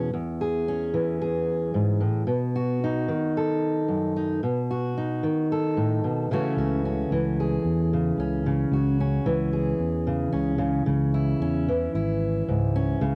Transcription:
Already playing: E2
0.14 E2
0.41 G#4
0.68 C#4
0.94 E3
1.22 G#4
1.74 G#2
2.01 A2
2.27 B2
2.56 F#4
2.84 D#4
3.08 D#3
3.37 A4
3.88 F#2
4.16 D#4
4.43 B2
4.71 F#4
4.97 D#4
5.23 D#3
5.52 A4
5.77 A2
6.04 B2
6.31 C#3 E3 A3 C#4 F#4
6.57 C#2 F#4
6.85 C#4
7.11 C#2 E3
7.40 G#4
7.64 E2
7.93 C#3
8.17 C#2 C#4
8.46 C#3
8.71 C#2 F#4
9.00 C#4
9.26 C#2 E3
9.53 G#4
9.79 E2
10.07 C#3
10.32 C#2 C#4
10.58 C#3
10.86 C#2 C#3
11.14 E4
11.40 E2 C#4
11.68 E3
11.94 G#1 E4
12.48 C#2 G#2
12.76 C#4
13.01 C#2 C#3

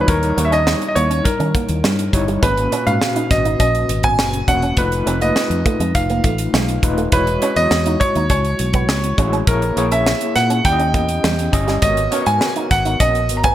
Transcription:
0.01 B4
0.07 D#2 G3 D#4 E4 A#4 C#5, kick, closed hi-hat
0.23 muted clean electric guitar stroke, closed hi-hat
0.37 D#2 G3 A#3 D#4 E4 C#5, closed hi-hat
0.45 E5
0.52 C#4 D#5, closed hi-hat
0.67 muted clean electric guitar stroke, snare
0.82 closed hi-hat
0.88 D#5
0.95 D#2 A#3 C#5, closed hi-hat
1.10 C#4, closed hi-hat
1.25 A#4, muted clean electric guitar stroke, muted fingered electric bass stroke, kick, closed hi-hat
1.40 D#3 C#4, closed hi-hat
1.55 A#3, kick, closed hi-hat
1.69 D#2, closed hi-hat
1.84 G2 G3, snare
1.99 closed hi-hat
2.13 G1 G3 D#4 E4 C#5, muted clean electric guitar stroke, kick, closed hi-hat
2.28 G3, closed hi-hat
2.42 G#1 G#3 A#3 C#4 F#4 B4, kick, closed hi-hat
2.57 muted clean electric guitar stroke, closed hi-hat
2.72 A#2 C#4 F#4 B4, closed hi-hat
2.87 G#2 F5, closed hi-hat
3.02 snare
3.16 D#4, closed hi-hat
3.31 G#1 D#5, muted clean electric guitar stroke, kick, snare, closed hi-hat
3.45 D#4, closed hi-hat
3.60 A#1 C#4 D#5, kick, closed hi-hat
3.75 closed hi-hat
3.89 G#1, muted clean electric guitar stroke, closed hi-hat
4.03 B3 G#5, kick, closed hi-hat
4.18 F#1, muted clean electric guitar stroke, snare
4.33 closed hi-hat
4.48 E1 A#3 C#4 F#4 B4 F#5, kick, closed hi-hat
4.62 C#4, closed hi-hat
4.77 F1 A3 D#4 F4 B4, kick, closed hi-hat
4.92 muted clean electric guitar stroke, closed hi-hat
5.06 F1 A3 C4 D#4 F4 B4, closed hi-hat
5.21 A#3 D#5, closed hi-hat
5.36 muted clean electric guitar stroke, snare
5.50 F2, closed hi-hat
5.66 A3, kick, closed hi-hat
5.80 F2 G#3, closed hi-hat
5.95 F1 F5, muted clean electric guitar stroke, kick, closed hi-hat
6.10 A#3, closed hi-hat
6.24 A1 A3, kick, closed hi-hat
6.38 closed hi-hat
6.53 B1 G#3, snare
6.68 closed hi-hat
6.83 D#1 A3 D#4 F4 B4, muted clean electric guitar stroke, kick, closed hi-hat
6.98 A3, closed hi-hat
7.12 E1 G#3 E4 F#4 B4 C#5, kick, closed hi-hat
7.27 muted clean electric guitar stroke, closed hi-hat
7.41 G#3 C#4 E4 F#4 C#5, closed hi-hat
7.56 E2 D#5, closed hi-hat
7.71 E2, snare
7.86 D#4, closed hi-hat
8.00 C#5, muted clean electric guitar stroke, kick, closed hi-hat
8.15 D#2 D#4, closed hi-hat
8.30 C#2 C#4 C#5, kick, closed hi-hat
8.45 closed hi-hat
8.59 B1, muted clean electric guitar stroke, closed hi-hat
8.73 B3, kick, closed hi-hat
8.88 C#2, muted clean electric guitar stroke, snare
9.04 closed hi-hat
9.18 A1 G#3 C#4 E4 F#4 C#5, kick, closed hi-hat
9.33 C#4, closed hi-hat
9.47 A#1 A#3 E4 G#4 A#4 C#5, kick, closed hi-hat
9.62 muted clean electric guitar stroke, closed hi-hat
9.76 A#1 A#3 E4 G#4 C#5, closed hi-hat
9.91 C#4 E5, closed hi-hat
10.07 muted clean electric guitar stroke, snare
10.21 closed hi-hat
10.35 A#2 A#3 F#5, snare, closed hi-hat
10.50 C#4, closed hi-hat
10.65 D#2 C#4 E4 G4 D5 G5, muted clean electric guitar stroke, kick, closed hi-hat
10.73 D#5
10.80 C#4, closed hi-hat
10.94 E2 A#3, kick, closed hi-hat
11.09 closed hi-hat
11.24 E2 G3, snare
11.39 closed hi-hat
11.52 G1 C#4 E4 G4 D#5, muted clean electric guitar stroke, kick, closed hi-hat
11.68 G3, snare, closed hi-hat
11.82 G#1 G#3 B3 F#4 A#4 C#5 D#5, kick, closed hi-hat
11.97 muted clean electric guitar stroke, closed hi-hat
12.11 B3 C#4 F#4 A#4 C#5, closed hi-hat
12.26 G#2 G#5, closed hi-hat
12.41 snare
12.56 D#4, closed hi-hat
12.71 G#1 F#5, muted clean electric guitar stroke, kick, snare, closed hi-hat
12.85 D#4, closed hi-hat
13.00 A#1 C#4 D#5, kick, closed hi-hat
13.15 closed hi-hat
13.29 G#1, muted clean electric guitar stroke, closed hi-hat
13.37 A#5
13.44 B3 G#5, kick, closed hi-hat

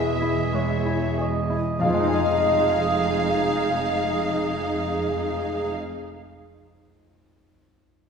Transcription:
Already playing: E1 E2 B2 G#3 E4 G#4 D#5 E5 G#5
0.21 E4 G#4
0.53 G#3 C#5
0.85 E4 G#5
1.18 G#4 D#5
1.50 E4 G#4
1.79 F1 F2 G#3 D#4 G#4 F5
1.84 F3 D#5
1.89 F3
1.93 G#3
2.00 D#4
2.08 G#4
2.14 D#5

